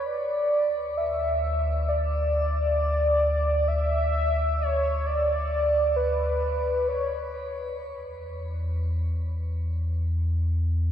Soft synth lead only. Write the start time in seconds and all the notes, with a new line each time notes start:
0.06 D5
0.97 E5
1.88 D5
3.68 E5
4.61 C#5
5.06 D5
5.96 B4
6.88 C#5